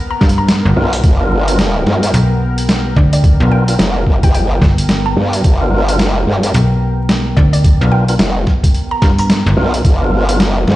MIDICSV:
0, 0, Header, 1, 7, 480
1, 0, Start_track
1, 0, Tempo, 550459
1, 906, Time_signature, 4, 2, 24, 8
1, 9381, End_track
2, 0, Start_track
2, 0, Title_t, "Synth pluck"
2, 0, Program_c, 0, 84
2, 92, Note_on_c, 0, 82, 91
2, 185, Note_off_c, 0, 82, 0
2, 331, Note_on_c, 0, 82, 92
2, 666, Note_off_c, 0, 82, 0
2, 2585, Note_on_c, 0, 74, 84
2, 2678, Note_off_c, 0, 74, 0
2, 2731, Note_on_c, 0, 74, 79
2, 2792, Note_off_c, 0, 74, 0
2, 3066, Note_on_c, 0, 79, 91
2, 3208, Note_off_c, 0, 79, 0
2, 3694, Note_on_c, 0, 79, 92
2, 3753, Note_off_c, 0, 79, 0
2, 3787, Note_on_c, 0, 79, 79
2, 3879, Note_off_c, 0, 79, 0
2, 4410, Note_on_c, 0, 82, 94
2, 4746, Note_off_c, 0, 82, 0
2, 6422, Note_on_c, 0, 74, 87
2, 6517, Note_off_c, 0, 74, 0
2, 6566, Note_on_c, 0, 74, 78
2, 6629, Note_off_c, 0, 74, 0
2, 6903, Note_on_c, 0, 79, 92
2, 7047, Note_off_c, 0, 79, 0
2, 7772, Note_on_c, 0, 82, 94
2, 7865, Note_off_c, 0, 82, 0
2, 8016, Note_on_c, 0, 82, 92
2, 8348, Note_off_c, 0, 82, 0
2, 9381, End_track
3, 0, Start_track
3, 0, Title_t, "Ambient pad"
3, 0, Program_c, 1, 92
3, 0, Note_on_c, 1, 59, 90
3, 0, Note_on_c, 1, 70, 88
3, 0, Note_on_c, 1, 79, 73
3, 9381, Note_off_c, 1, 59, 0
3, 9381, Note_off_c, 1, 70, 0
3, 9381, Note_off_c, 1, 79, 0
3, 9381, End_track
4, 0, Start_track
4, 0, Title_t, "Tonewheel organ"
4, 0, Program_c, 2, 16
4, 180, Note_on_c, 2, 70, 94
4, 181, Note_on_c, 2, 59, 85
4, 181, Note_on_c, 2, 65, 76
4, 182, Note_on_c, 2, 62, 75
4, 270, Note_off_c, 2, 65, 0
4, 270, Note_off_c, 2, 70, 0
4, 271, Note_off_c, 2, 59, 0
4, 271, Note_off_c, 2, 62, 0
4, 664, Note_on_c, 2, 70, 96
4, 665, Note_on_c, 2, 59, 86
4, 665, Note_on_c, 2, 62, 79
4, 665, Note_on_c, 2, 65, 81
4, 804, Note_off_c, 2, 70, 0
4, 805, Note_off_c, 2, 59, 0
4, 805, Note_off_c, 2, 62, 0
4, 805, Note_off_c, 2, 65, 0
4, 1048, Note_on_c, 2, 62, 80
4, 1049, Note_on_c, 2, 59, 85
4, 1049, Note_on_c, 2, 65, 82
4, 1049, Note_on_c, 2, 70, 99
4, 1254, Note_off_c, 2, 62, 0
4, 1255, Note_off_c, 2, 59, 0
4, 1255, Note_off_c, 2, 65, 0
4, 1255, Note_off_c, 2, 70, 0
4, 1289, Note_on_c, 2, 62, 90
4, 1289, Note_on_c, 2, 65, 90
4, 1290, Note_on_c, 2, 59, 98
4, 1290, Note_on_c, 2, 70, 114
4, 1381, Note_off_c, 2, 62, 0
4, 1381, Note_off_c, 2, 65, 0
4, 1381, Note_off_c, 2, 70, 0
4, 1382, Note_off_c, 2, 59, 0
4, 2972, Note_on_c, 2, 59, 86
4, 2972, Note_on_c, 2, 62, 80
4, 2972, Note_on_c, 2, 65, 78
4, 2972, Note_on_c, 2, 70, 98
4, 3176, Note_off_c, 2, 59, 0
4, 3176, Note_off_c, 2, 62, 0
4, 3176, Note_off_c, 2, 65, 0
4, 3177, Note_off_c, 2, 70, 0
4, 3212, Note_on_c, 2, 59, 86
4, 3212, Note_on_c, 2, 62, 81
4, 3212, Note_on_c, 2, 70, 94
4, 3213, Note_on_c, 2, 65, 79
4, 3268, Note_off_c, 2, 59, 0
4, 3268, Note_off_c, 2, 62, 0
4, 3268, Note_off_c, 2, 70, 0
4, 3269, Note_off_c, 2, 65, 0
4, 4890, Note_on_c, 2, 59, 91
4, 4890, Note_on_c, 2, 62, 81
4, 4890, Note_on_c, 2, 65, 78
4, 4891, Note_on_c, 2, 70, 100
4, 5095, Note_off_c, 2, 62, 0
4, 5096, Note_off_c, 2, 59, 0
4, 5096, Note_off_c, 2, 65, 0
4, 5096, Note_off_c, 2, 70, 0
4, 5130, Note_on_c, 2, 59, 101
4, 5130, Note_on_c, 2, 62, 90
4, 5131, Note_on_c, 2, 65, 92
4, 5132, Note_on_c, 2, 70, 107
4, 5222, Note_off_c, 2, 59, 0
4, 5222, Note_off_c, 2, 62, 0
4, 5222, Note_off_c, 2, 65, 0
4, 5222, Note_off_c, 2, 70, 0
4, 6810, Note_on_c, 2, 59, 87
4, 6810, Note_on_c, 2, 62, 81
4, 6811, Note_on_c, 2, 65, 78
4, 6811, Note_on_c, 2, 70, 97
4, 7016, Note_off_c, 2, 59, 0
4, 7016, Note_off_c, 2, 62, 0
4, 7016, Note_off_c, 2, 65, 0
4, 7016, Note_off_c, 2, 70, 0
4, 7049, Note_on_c, 2, 62, 79
4, 7051, Note_on_c, 2, 59, 87
4, 7051, Note_on_c, 2, 70, 95
4, 7052, Note_on_c, 2, 65, 77
4, 7107, Note_off_c, 2, 62, 0
4, 7108, Note_off_c, 2, 59, 0
4, 7108, Note_off_c, 2, 65, 0
4, 7108, Note_off_c, 2, 70, 0
4, 7863, Note_on_c, 2, 62, 77
4, 7864, Note_on_c, 2, 59, 86
4, 7864, Note_on_c, 2, 70, 94
4, 7865, Note_on_c, 2, 65, 76
4, 7952, Note_off_c, 2, 59, 0
4, 7952, Note_off_c, 2, 62, 0
4, 7952, Note_off_c, 2, 65, 0
4, 7952, Note_off_c, 2, 70, 0
4, 8344, Note_on_c, 2, 70, 98
4, 8345, Note_on_c, 2, 59, 92
4, 8345, Note_on_c, 2, 62, 81
4, 8345, Note_on_c, 2, 65, 81
4, 8484, Note_off_c, 2, 70, 0
4, 8485, Note_off_c, 2, 59, 0
4, 8485, Note_off_c, 2, 62, 0
4, 8485, Note_off_c, 2, 65, 0
4, 8730, Note_on_c, 2, 59, 90
4, 8730, Note_on_c, 2, 62, 81
4, 8730, Note_on_c, 2, 65, 81
4, 8731, Note_on_c, 2, 70, 99
4, 8936, Note_off_c, 2, 59, 0
4, 8936, Note_off_c, 2, 62, 0
4, 8936, Note_off_c, 2, 65, 0
4, 8936, Note_off_c, 2, 70, 0
4, 8969, Note_on_c, 2, 59, 99
4, 8969, Note_on_c, 2, 62, 92
4, 8969, Note_on_c, 2, 70, 112
4, 8970, Note_on_c, 2, 65, 93
4, 9061, Note_off_c, 2, 59, 0
4, 9061, Note_off_c, 2, 62, 0
4, 9061, Note_off_c, 2, 70, 0
4, 9062, Note_off_c, 2, 65, 0
4, 9381, End_track
5, 0, Start_track
5, 0, Title_t, "FM bass"
5, 0, Program_c, 3, 39
5, 186, Note_on_c, 3, 43, 95
5, 547, Note_off_c, 3, 43, 0
5, 571, Note_on_c, 3, 31, 96
5, 651, Note_off_c, 3, 31, 0
5, 1865, Note_on_c, 3, 35, 95
5, 2570, Note_off_c, 3, 35, 0
5, 2585, Note_on_c, 3, 38, 97
5, 2947, Note_off_c, 3, 38, 0
5, 2968, Note_on_c, 3, 35, 99
5, 3289, Note_off_c, 3, 35, 0
5, 4026, Note_on_c, 3, 31, 96
5, 4491, Note_off_c, 3, 31, 0
5, 5708, Note_on_c, 3, 35, 98
5, 6412, Note_off_c, 3, 35, 0
5, 6427, Note_on_c, 3, 38, 99
5, 6788, Note_off_c, 3, 38, 0
5, 6814, Note_on_c, 3, 35, 98
5, 7132, Note_off_c, 3, 35, 0
5, 7865, Note_on_c, 3, 43, 96
5, 8227, Note_off_c, 3, 43, 0
5, 8253, Note_on_c, 3, 31, 98
5, 8332, Note_off_c, 3, 31, 0
5, 9381, End_track
6, 0, Start_track
6, 0, Title_t, "Wobble bass"
6, 0, Program_c, 4, 39
6, 664, Note_on_c, 4, 35, 96
6, 890, Note_off_c, 4, 35, 0
6, 902, Note_on_c, 4, 31, 96
6, 1609, Note_off_c, 4, 31, 0
6, 1623, Note_on_c, 4, 43, 99
6, 1849, Note_off_c, 4, 43, 0
6, 3303, Note_on_c, 4, 29, 102
6, 3529, Note_off_c, 4, 29, 0
6, 3544, Note_on_c, 4, 31, 99
6, 3667, Note_off_c, 4, 31, 0
6, 3692, Note_on_c, 4, 31, 99
6, 4011, Note_off_c, 4, 31, 0
6, 4504, Note_on_c, 4, 43, 93
6, 4730, Note_off_c, 4, 43, 0
6, 4746, Note_on_c, 4, 31, 100
6, 5243, Note_off_c, 4, 31, 0
6, 5243, Note_on_c, 4, 30, 100
6, 5451, Note_off_c, 4, 30, 0
6, 5465, Note_on_c, 4, 43, 99
6, 5690, Note_off_c, 4, 43, 0
6, 7145, Note_on_c, 4, 29, 101
6, 7370, Note_off_c, 4, 29, 0
6, 8343, Note_on_c, 4, 35, 94
6, 8569, Note_off_c, 4, 35, 0
6, 8585, Note_on_c, 4, 31, 96
6, 9082, Note_off_c, 4, 31, 0
6, 9082, Note_on_c, 4, 30, 96
6, 9290, Note_off_c, 4, 30, 0
6, 9310, Note_on_c, 4, 43, 101
6, 9381, Note_off_c, 4, 43, 0
6, 9381, End_track
7, 0, Start_track
7, 0, Title_t, "Drums"
7, 183, Note_on_c, 9, 38, 65
7, 183, Note_on_c, 9, 40, 40
7, 185, Note_on_c, 9, 36, 112
7, 256, Note_on_c, 9, 42, 68
7, 270, Note_off_c, 9, 38, 0
7, 270, Note_off_c, 9, 40, 0
7, 273, Note_off_c, 9, 36, 0
7, 343, Note_off_c, 9, 42, 0
7, 423, Note_on_c, 9, 38, 122
7, 423, Note_on_c, 9, 42, 56
7, 510, Note_off_c, 9, 38, 0
7, 510, Note_off_c, 9, 42, 0
7, 810, Note_on_c, 9, 42, 69
7, 897, Note_off_c, 9, 42, 0
7, 903, Note_on_c, 9, 42, 55
7, 904, Note_on_c, 9, 36, 127
7, 991, Note_off_c, 9, 36, 0
7, 991, Note_off_c, 9, 42, 0
7, 1289, Note_on_c, 9, 42, 68
7, 1377, Note_off_c, 9, 42, 0
7, 1384, Note_on_c, 9, 38, 125
7, 1384, Note_on_c, 9, 42, 54
7, 1472, Note_off_c, 9, 38, 0
7, 1472, Note_off_c, 9, 42, 0
7, 1626, Note_on_c, 9, 40, 52
7, 1713, Note_off_c, 9, 40, 0
7, 1770, Note_on_c, 9, 42, 70
7, 1857, Note_off_c, 9, 42, 0
7, 1865, Note_on_c, 9, 42, 53
7, 1952, Note_off_c, 9, 42, 0
7, 2249, Note_on_c, 9, 42, 70
7, 2336, Note_off_c, 9, 42, 0
7, 2345, Note_on_c, 9, 38, 125
7, 2345, Note_on_c, 9, 42, 55
7, 2432, Note_off_c, 9, 38, 0
7, 2432, Note_off_c, 9, 42, 0
7, 2585, Note_on_c, 9, 36, 110
7, 2672, Note_off_c, 9, 36, 0
7, 2728, Note_on_c, 9, 42, 69
7, 2815, Note_off_c, 9, 42, 0
7, 2824, Note_on_c, 9, 36, 126
7, 2825, Note_on_c, 9, 42, 52
7, 2912, Note_off_c, 9, 36, 0
7, 2912, Note_off_c, 9, 42, 0
7, 3209, Note_on_c, 9, 42, 65
7, 3296, Note_off_c, 9, 42, 0
7, 3307, Note_on_c, 9, 38, 122
7, 3307, Note_on_c, 9, 42, 53
7, 3394, Note_off_c, 9, 38, 0
7, 3394, Note_off_c, 9, 42, 0
7, 3545, Note_on_c, 9, 36, 62
7, 3633, Note_off_c, 9, 36, 0
7, 3690, Note_on_c, 9, 36, 107
7, 3690, Note_on_c, 9, 42, 65
7, 3777, Note_off_c, 9, 36, 0
7, 3778, Note_off_c, 9, 42, 0
7, 3789, Note_on_c, 9, 42, 52
7, 3876, Note_off_c, 9, 42, 0
7, 4025, Note_on_c, 9, 36, 108
7, 4029, Note_on_c, 9, 38, 64
7, 4029, Note_on_c, 9, 40, 37
7, 4112, Note_off_c, 9, 36, 0
7, 4116, Note_off_c, 9, 38, 0
7, 4116, Note_off_c, 9, 40, 0
7, 4171, Note_on_c, 9, 42, 63
7, 4258, Note_off_c, 9, 42, 0
7, 4264, Note_on_c, 9, 38, 123
7, 4264, Note_on_c, 9, 42, 53
7, 4351, Note_off_c, 9, 38, 0
7, 4351, Note_off_c, 9, 42, 0
7, 4649, Note_on_c, 9, 42, 64
7, 4736, Note_off_c, 9, 42, 0
7, 4746, Note_on_c, 9, 36, 126
7, 4746, Note_on_c, 9, 42, 52
7, 4833, Note_off_c, 9, 36, 0
7, 4833, Note_off_c, 9, 42, 0
7, 5132, Note_on_c, 9, 42, 65
7, 5219, Note_off_c, 9, 42, 0
7, 5226, Note_on_c, 9, 38, 115
7, 5226, Note_on_c, 9, 42, 50
7, 5313, Note_off_c, 9, 38, 0
7, 5313, Note_off_c, 9, 42, 0
7, 5610, Note_on_c, 9, 42, 63
7, 5697, Note_off_c, 9, 42, 0
7, 5706, Note_on_c, 9, 42, 50
7, 5793, Note_off_c, 9, 42, 0
7, 6183, Note_on_c, 9, 38, 123
7, 6183, Note_on_c, 9, 42, 50
7, 6270, Note_off_c, 9, 38, 0
7, 6270, Note_off_c, 9, 42, 0
7, 6426, Note_on_c, 9, 36, 107
7, 6513, Note_off_c, 9, 36, 0
7, 6569, Note_on_c, 9, 42, 62
7, 6656, Note_off_c, 9, 42, 0
7, 6666, Note_on_c, 9, 36, 122
7, 6666, Note_on_c, 9, 42, 51
7, 6753, Note_off_c, 9, 36, 0
7, 6753, Note_off_c, 9, 42, 0
7, 7050, Note_on_c, 9, 42, 67
7, 7137, Note_off_c, 9, 42, 0
7, 7144, Note_on_c, 9, 38, 115
7, 7144, Note_on_c, 9, 42, 50
7, 7231, Note_off_c, 9, 38, 0
7, 7231, Note_off_c, 9, 42, 0
7, 7385, Note_on_c, 9, 36, 59
7, 7385, Note_on_c, 9, 40, 54
7, 7472, Note_off_c, 9, 36, 0
7, 7472, Note_off_c, 9, 40, 0
7, 7530, Note_on_c, 9, 36, 102
7, 7533, Note_on_c, 9, 42, 65
7, 7618, Note_off_c, 9, 36, 0
7, 7620, Note_off_c, 9, 42, 0
7, 7625, Note_on_c, 9, 42, 51
7, 7713, Note_off_c, 9, 42, 0
7, 7863, Note_on_c, 9, 38, 59
7, 7863, Note_on_c, 9, 40, 39
7, 7865, Note_on_c, 9, 36, 100
7, 7951, Note_off_c, 9, 38, 0
7, 7951, Note_off_c, 9, 40, 0
7, 7952, Note_off_c, 9, 36, 0
7, 8009, Note_on_c, 9, 42, 63
7, 8096, Note_off_c, 9, 42, 0
7, 8106, Note_on_c, 9, 38, 115
7, 8106, Note_on_c, 9, 42, 52
7, 8193, Note_off_c, 9, 38, 0
7, 8193, Note_off_c, 9, 42, 0
7, 8492, Note_on_c, 9, 42, 65
7, 8579, Note_off_c, 9, 42, 0
7, 8586, Note_on_c, 9, 36, 117
7, 8586, Note_on_c, 9, 42, 53
7, 8673, Note_off_c, 9, 36, 0
7, 8674, Note_off_c, 9, 42, 0
7, 8971, Note_on_c, 9, 42, 67
7, 9059, Note_off_c, 9, 42, 0
7, 9069, Note_on_c, 9, 38, 112
7, 9069, Note_on_c, 9, 42, 52
7, 9156, Note_off_c, 9, 38, 0
7, 9156, Note_off_c, 9, 42, 0
7, 9309, Note_on_c, 9, 40, 54
7, 9344, Note_off_c, 9, 40, 0
7, 9344, Note_on_c, 9, 40, 43
7, 9381, Note_off_c, 9, 40, 0
7, 9381, End_track
0, 0, End_of_file